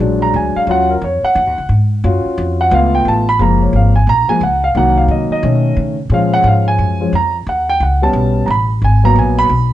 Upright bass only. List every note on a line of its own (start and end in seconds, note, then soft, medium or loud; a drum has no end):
0.00 0.32 A#1 medium
0.34 0.53 D2 medium
0.55 muted upright bass stroke soft
0.67 1.00 D#2 medium
1.01 1.21 F2 medium
1.23 muted upright bass stroke soft
1.35 1.47 F#2 loud
1.47 1.57 D#2 medium
1.58 1.68 C#2 medium
1.69 2.02 G#2 medium
2.04 2.23 F#2 medium
2.25 muted upright bass stroke soft
2.38 2.70 F2 loud
2.71 3.04 C#2 loud
3.05 3.38 A1 medium
3.39 3.72 F#1 medium
3.73 4.06 G#1 medium
4.07 4.27 A#1 medium
4.29 muted upright bass stroke soft
4.41 4.74 C#2 medium
4.75 5.08 C2 medium
5.08 5.28 C3 medium
5.30 muted upright bass stroke soft
5.43 5.76 B2 medium
5.77 6.09 C#3 medium
6.10 6.43 A#2 medium
6.44 6.77 G#2 medium
6.78 7.11 F#2 medium
7.13 7.45 F2 medium
7.46 7.79 D#2 medium
7.80 8.13 C#2 medium
8.13 8.47 B1 medium
8.48 8.81 A1 medium
8.82 9.15 G#1 medium
9.15 9.48 A#1 medium
9.49 9.73 B1 medium